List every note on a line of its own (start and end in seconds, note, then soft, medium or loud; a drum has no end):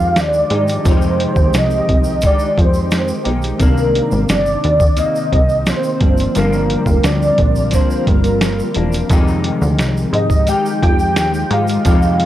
0.00 0.18 F2 loud
0.00 0.53 D#3 medium
0.00 5.98 D#3 medium
0.00 3.57 F3 medium
0.00 0.51 G#3 medium
0.00 3.57 G#3 medium
0.00 0.51 D#4 medium
0.00 0.50 G4 medium
0.00 3.57 G4 medium
0.00 0.22 F5 loud
0.16 0.44 D#2 medium
0.16 snare loud
0.16 closed hi-hat medium
0.16 shaker medium
0.20 0.91 D5 loud
0.33 shaker soft
0.50 0.78 G#2 medium
0.50 0.85 D#3 soft
0.50 0.86 G#3 soft
0.50 0.85 D#4 soft
0.50 0.85 G4 soft
0.50 closed hi-hat medium
0.68 closed hi-hat medium
0.68 shaker soft
0.85 2.23 F2 medium
0.85 1.27 F2 loud
0.85 2.23 C3 medium
0.85 2.22 D#3 medium
0.85 2.22 G#3 medium
0.85 2.24 D#4 medium
0.85 2.24 G4 medium
0.85 kick loud
0.85 closed hi-hat medium
0.85 shaker medium
0.90 1.59 C5 loud
1.02 shaker soft
1.20 closed hi-hat medium
1.36 1.50 D#2 loud
1.36 kick medium
1.36 shaker soft
1.54 1.82 C2 medium
1.54 snare loud
1.54 closed hi-hat medium
1.54 shaker medium
1.58 2.25 D#5 loud
1.70 shaker soft
1.89 2.30 C2 medium
1.89 kick medium
1.89 closed hi-hat medium
2.04 shaker soft
2.21 3.26 D#3 medium
2.21 3.25 G#3 medium
2.21 3.24 D#4 medium
2.21 3.24 G4 medium
2.21 kick medium
2.21 closed hi-hat medium
2.21 shaker medium
2.26 2.62 D5 loud
2.39 shaker medium
2.58 3.13 F2 loud
2.58 3.28 C5 medium
2.58 kick medium
2.58 closed hi-hat medium
2.74 shaker soft
2.91 snare loud
2.91 closed hi-hat loud
2.91 shaker medium
3.08 shaker soft
3.24 3.54 B1 medium
3.24 3.58 D#3 soft
3.24 3.60 G#3 soft
3.24 3.60 D#4 soft
3.24 3.60 G4 soft
3.24 closed hi-hat medium
3.42 closed hi-hat medium
3.42 shaker soft
3.58 4.02 C2 medium
3.58 4.95 C3 medium
3.58 4.96 D#3 medium
3.58 4.98 A#3 medium
3.58 5.99 A#3 medium
3.58 5.00 D4 medium
3.58 4.26 A#4 medium
3.58 kick loud
3.58 closed hi-hat medium
3.58 shaker medium
3.63 6.00 C3 medium
3.63 9.08 C4 medium
3.77 shaker soft
3.95 closed hi-hat medium
4.11 4.26 G#1 loud
4.11 shaker soft
4.29 4.57 G1 medium
4.29 5.00 D5 loud
4.29 snare loud
4.29 closed hi-hat medium
4.29 shaker medium
4.46 shaker soft
4.64 5.05 D#2 loud
4.64 closed hi-hat medium
4.80 kick loud
4.80 shaker soft
4.97 6.00 C3 medium
4.97 6.01 D#3 medium
4.97 6.00 A#3 medium
4.97 5.71 D#5 loud
4.97 closed hi-hat loud
4.97 shaker medium
5.15 shaker soft
5.32 5.74 C2 loud
5.32 kick medium
5.32 closed hi-hat medium
5.49 shaker soft
5.66 6.36 C5 loud
5.66 snare loud
5.66 closed hi-hat medium
5.66 shaker medium
5.83 shaker soft
6.00 6.29 G1 loud
6.00 6.35 F3 soft
6.00 9.08 G3 medium
6.00 6.35 A#3 soft
6.00 6.35 D4 soft
6.00 9.08 F4 medium
6.00 9.08 A#4 medium
6.00 kick loud
6.00 closed hi-hat medium
6.18 closed hi-hat medium
6.18 shaker soft
6.35 6.77 G1 loud
6.35 7.73 G2 medium
6.35 7.71 D3 medium
6.35 7.73 F3 medium
6.35 7.73 A#3 loud
6.35 7.74 D4 medium
6.35 7.07 A#4 loud
6.35 closed hi-hat medium
6.35 shaker medium
6.53 shaker soft
6.70 closed hi-hat medium
6.86 7.00 F1 loud
6.86 kick medium
6.86 shaker soft
7.03 7.32 D2 medium
7.03 7.76 D5 loud
7.03 snare loud
7.03 closed hi-hat medium
7.03 shaker medium
7.22 shaker soft
7.38 7.80 A#1 medium
7.38 kick medium
7.38 closed hi-hat medium
7.55 shaker soft
7.71 8.76 D3 soft
7.71 8.78 F3 medium
7.71 8.76 A#3 medium
7.71 8.10 C5 loud
7.71 kick medium
7.71 snare soft
7.71 closed hi-hat medium
7.71 shaker medium
7.75 8.75 D4 medium
7.91 shaker medium
8.07 8.62 G1 loud
8.07 8.77 A#4 medium
8.07 kick medium
8.07 closed hi-hat medium
8.24 closed hi-hat medium
8.24 shaker soft
8.41 snare loud
8.41 closed hi-hat medium
8.41 shaker medium
8.59 shaker soft
8.74 9.04 E1 medium
8.74 9.11 A#3 soft
8.74 9.10 D4 medium
8.74 closed hi-hat medium
8.79 9.11 F3 soft
8.92 closed hi-hat medium
8.92 shaker soft
9.09 10.47 F2 medium
9.09 9.52 F2 loud
9.09 10.48 C3 medium
9.09 10.47 D#3 medium
9.09 12.26 F3 medium
9.09 10.47 G#3 medium
9.09 12.26 G#3 medium
9.09 10.49 D#4 medium
9.09 12.26 D#4 medium
9.09 12.26 G4 medium
9.09 kick loud
9.09 closed hi-hat medium
9.09 shaker medium
9.13 10.50 G4 medium
9.28 shaker soft
9.44 closed hi-hat medium
9.62 9.80 D2 loud
9.62 shaker soft
9.79 10.06 C2 medium
9.79 snare loud
9.79 closed hi-hat medium
9.79 shaker medium
9.97 shaker soft
10.13 10.55 G#2 loud
10.13 10.50 D#5 medium
10.13 closed hi-hat medium
10.30 kick medium
10.30 shaker soft
10.47 11.53 D#3 medium
10.47 11.51 G#3 medium
10.47 11.51 D#4 medium
10.47 11.50 G4 medium
10.47 10.82 G5 loud
10.47 closed hi-hat medium
10.47 shaker medium
10.66 shaker medium
10.82 11.18 F2 medium
10.82 11.54 G5 loud
10.82 kick medium
10.82 closed hi-hat medium
10.99 shaker soft
11.16 11.44 D#2 medium
11.16 snare loud
11.16 closed hi-hat medium
11.16 shaker medium
11.34 shaker soft
11.50 11.79 G#2 loud
11.50 11.85 D#3 soft
11.50 11.86 G#3 soft
11.50 11.86 D#4 soft
11.50 11.85 G4 medium
11.50 12.26 F5 loud
11.50 closed hi-hat medium
11.67 closed hi-hat medium
11.67 shaker soft
11.85 12.26 F2 medium
11.85 12.26 F2 loud
11.85 12.26 C3 medium
11.85 12.26 D#3 medium
11.85 12.26 G#3 medium
11.85 12.26 D#4 medium
11.85 12.26 G4 medium
11.85 kick loud
11.85 closed hi-hat medium
11.85 shaker medium
12.02 shaker soft
12.20 closed hi-hat medium